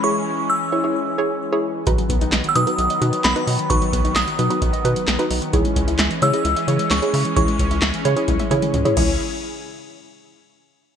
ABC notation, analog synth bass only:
X:1
M:4/4
L:1/16
Q:1/4=131
K:C#m
V:1 name="Analog synth bass" clef=bass
z16 | B,,, z B,,, B,,, B,,, z B,, z B,,, z B,, z B,,, z B,, z | B,,, z B,,, B,,, B,,, z B,, z B,,, z B,, z B,,, z B,,, z | C,, z C,, C,, C,, z C, z C,, z C, z C,, z C, z |
C,, z C,, C,, C,, z C, z C,, z C, z C,, z C,,2 | z16 |]